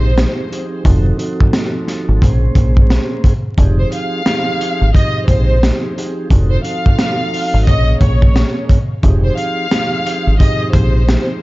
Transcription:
Already playing: A#1 F3 C4 D#4 G4 G#4 C5
0.16 F3 C4 D#4 G4 G#4, snare, closed hi-hat
0.49 F3 C4 D#4 G4 G#4, closed hi-hat
0.83 F1 F3 C4 D#4 F#4 A4, kick, closed hi-hat
1.16 F3 C4 D#4 F#4 A4, closed hi-hat
1.41 kick
1.53 snare, closed hi-hat
1.88 snare, closed hi-hat
2.08 G#1
2.20 A#1 A#2 A#3 C#4 G#4 C5, kick, closed hi-hat
2.55 A#1, kick, closed hi-hat
2.77 kick
2.90 snare, closed hi-hat
3.24 kick, closed hi-hat
3.57 F1 F3 C4 D#4 G4 G#4, kick, closed hi-hat
3.79 C5
3.92 F5, closed hi-hat
4.25 F3 C4 D#4 G4 G#4, snare, closed hi-hat
4.61 closed hi-hat
4.81 G#1
4.92 F3 C4 D#4 G4 G#4 D#5, kick, closed hi-hat
5.27 A#1 C5, kick, closed hi-hat
5.61 F3 C4 D#4 G4 G#4, snare, closed hi-hat
5.95 F3 C4 D#4 G4 G#4, closed hi-hat
6.28 F1 F3 C4 D#4 F#4 A4, kick, closed hi-hat
6.51 C5
6.62 F3 C4 D#4 F#4 A4 F5, closed hi-hat
6.86 kick
6.99 snare, closed hi-hat
7.34 open hi-hat
7.54 G#1
7.65 A#1 A#2 A#3 C#4 G#4 C#5 D#5, kick, closed hi-hat
8.01 A#1 C#5, kick, closed hi-hat
8.22 kick
8.36 snare, closed hi-hat
8.69 kick, closed hi-hat
9.03 F1 F3 C4 D#4 G4 G#4, kick, closed hi-hat
9.24 C5
9.37 F5, closed hi-hat
9.71 F3 C4 D#4 G4 G#4, snare, closed hi-hat
10.07 closed hi-hat
10.27 G#1
10.37 F3 C4 D#4 G4 G#4 D#5, kick
10.41 closed hi-hat
10.73 A#1 C5, kick, closed hi-hat
11.07 F3 C4 D#4 G4 G#4, snare, closed hi-hat

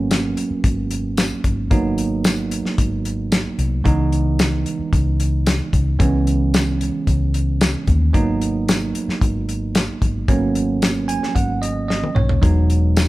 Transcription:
Already playing: G#1 F#3 A#3 B3 C#4
0.11 snare, closed hi-hat, tambourine
0.37 closed hi-hat
0.50 muted fingered electric bass stroke
0.64 G#1, kick, closed hi-hat
0.91 closed hi-hat
1.17 snare, closed hi-hat, tambourine
1.44 G#1, kick, closed hi-hat
1.71 G#1 F#3 A#3 B3 D#4, kick, closed hi-hat
1.98 closed hi-hat
2.24 snare, closed hi-hat, tambourine
2.51 closed hi-hat
2.65 snare
2.78 G#1, kick, closed hi-hat
3.05 closed hi-hat
3.32 snare, closed hi-hat, tambourine
3.58 C2, closed hi-hat
3.84 C#2 E3 G#3 B3 D#4, kick, closed hi-hat
4.12 closed hi-hat
4.39 snare, closed hi-hat, tambourine
4.66 closed hi-hat
4.79 muted fingered electric bass stroke
4.93 C#2, kick, closed hi-hat
5.20 closed hi-hat
5.46 snare, closed hi-hat, tambourine
5.73 C#2, kick, closed hi-hat
5.99 C#2 E3 G#3 B3 C#4, kick, closed hi-hat
6.27 closed hi-hat
6.54 snare, closed hi-hat, tambourine
6.81 closed hi-hat
7.07 C#2, kick, closed hi-hat
7.34 closed hi-hat
7.61 snare, closed hi-hat, tambourine
7.87 D#2, kick, closed hi-hat
8.13 G#1 F#3 A#3 B3 D#4, kick, closed hi-hat
8.42 closed hi-hat
8.69 snare, closed hi-hat, tambourine
8.95 closed hi-hat
9.08 muted fingered electric bass stroke, snare
9.21 G#1, kick, closed hi-hat
9.49 closed hi-hat
9.75 snare, closed hi-hat, tambourine
10.02 G#1, kick, closed hi-hat
10.28 G#1 F#3 A#3 B3 C#4, kick, closed hi-hat
10.55 closed hi-hat
10.82 snare, closed hi-hat, tambourine
11.08 G#5, closed hi-hat
11.23 snare
11.35 G#1 F#5, kick, closed hi-hat
11.62 D#5, closed hi-hat
11.88 D#5, snare
12.04 high tom
12.15 B1 C#5, mid tom
12.29 floor tom
12.41 E1 F#3 G#3 B3 D#4, kick, closed hi-hat
12.70 closed hi-hat
12.97 snare, closed hi-hat, tambourine

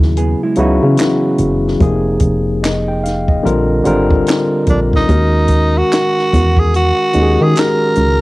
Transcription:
Already playing: D#2 C#3 F#3 B3 E4 G#4
0.02 snare
0.17 B3 G#4, closed hi-hat
0.43 G#3 E4
0.56 C#2 C#3 F#3 B3 E4, closed hi-hat
0.60 F#3 D#4 F#4
0.83 C#3 E3 C#4
0.97 snare, clap, closed hi-hat
1.38 F#1, closed hi-hat
1.68 snare
1.79 F1 C3 F3 A#3 D#4 G#4, kick, closed hi-hat
2.20 F1, kick, closed hi-hat
2.63 D#5, snare, clap, closed hi-hat
2.88 G5
3.04 F5, snare, closed hi-hat
3.28 D#5, kick
3.43 A#1 D3 G3 C4 F4 A#4, closed hi-hat
3.84 G#1 D3 G3 C4 F4 A#4, closed hi-hat
4.11 kick
4.27 snare, clap, closed hi-hat
4.67 A#1 D4, kick, closed hi-hat
4.93 D#4, kick, snare
5.08 D#2 D#3 G#3 C#4 F#4 A#4, kick, closed hi-hat
5.48 kick, closed hi-hat
5.78 F#4
5.93 snare, clap, closed hi-hat
6.18 snare
6.33 E2, kick, closed hi-hat
6.57 G#4, kick
6.74 F#4, closed hi-hat
7.13 D#2 D#3 G#3 C#4 F#4 G4, closed hi-hat
7.22 G#4
7.41 D#3 G#4
7.55 A#4, snare, clap, closed hi-hat
7.95 C#2, closed hi-hat

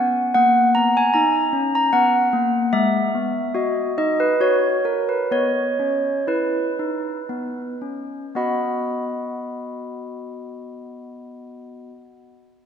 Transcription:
Already playing: B3 F#5
0.34 A#3 F#5
0.75 B3 A#5
0.97 G#5
1.14 D#4 A#5
1.53 C#4
1.75 A#5
1.93 B3 F#5
2.33 A#3
2.73 G#3 E5
3.15 B3
3.55 F#4 D#5
3.98 D#4 D#5
4.20 B4
4.40 F#4 C#5
4.85 A#4
5.09 B4
5.31 B3 C#5 D#5
5.79 C#4
6.27 E4 B4
6.79 D#4
7.29 B3
7.81 C#4
8.35 B3 F#4 D#5 F#5 B5

